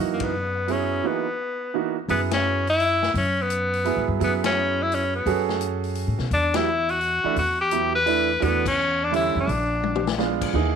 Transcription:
Already playing: F#2 E3 A#3 D#4 F#4
0.13 A#3
0.20 B3, kick, ride
0.68 F#3 B3 C#4 E4 G#4, open hi-hat
1.04 E3 A#3 B3 D#4 F#4
1.74 E3 A#3 D#4 F#4
2.08 F#2 F#3 B3 E4 G#4, open hi-hat
2.31 C#4, snare, ride
2.67 E4, open hi-hat
2.80 open hi-hat
3.03 snare
3.14 F#2 C#4, open hi-hat
3.42 B3
3.50 closed hi-hat
3.74 open hi-hat
3.85 F#3 B3 E4 G#4, open hi-hat
3.96 G#2
4.08 G2
4.19 F#2 F#3 B3 E4 G#4, open hi-hat
4.24 B3
4.44 C#4, snare, ride
4.83 E4
4.92 C#4, open hi-hat
5.15 B3
5.26 F#2 C#4 F#4 G#4 A4, open hi-hat
5.49 snare
5.61 closed hi-hat
5.84 open hi-hat
5.95 open hi-hat
6.07 A2
6.18 B2, snare
6.31 E2 D4, open hi-hat
6.54 F#3 B3 E4 G4, snare, ride
6.89 F#4, open hi-hat
7.01 open hi-hat
7.24 E3 A3 D4 E4, muted upright bass stroke
7.36 E2 F#4, open hi-hat
7.61 G4
7.71 F#3 B3 E4 G4, closed hi-hat
7.95 B4
8.06 E3 A3 D4 E4, open hi-hat
8.40 E2 E3 A3 B3 D4 F#4, open hi-hat
8.66 C#4, kick, crash
9.04 D4
9.11 D3 G3 C#4 E4, open hi-hat
9.16 E4
9.35 F2
9.40 D4
9.47 A#1, open hi-hat
9.83 high tom
9.96 mid tom
10.07 snare
10.18 G#3 B3 D4 F4, snare
10.42 kick, crash
10.53 D#2 E3 A#3 D#4 G#4

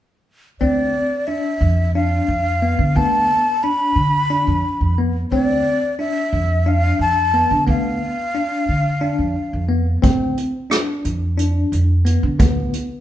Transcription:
0.60 D2 C4 D5
1.27 D4 E5
1.61 F2
1.94 D4 F5
2.28 F2
2.62 B3
2.79 D3
2.95 D2 B3 A5
3.63 D4 B5
3.96 D3
4.30 D4
4.47 F2
4.81 F2
4.98 B3
5.31 D2 C4 D5
5.99 D4 E5
6.33 F2
6.66 D4 F5
6.99 F2 A5
7.34 B3
7.51 D3
7.67 D2 B3 F5
8.35 D4
8.69 D3
9.01 D4
9.19 F2
9.53 F2
9.69 B3
10.02 D2 C4, kick, closed hi-hat
10.37 closed hi-hat
10.70 D4, cross-stick, closed hi-hat
11.05 F2, closed hi-hat
11.38 D4, closed hi-hat
11.72 F2, closed hi-hat
12.05 B3, closed hi-hat
12.23 D3
12.39 D2 B3, kick, closed hi-hat
12.73 closed hi-hat

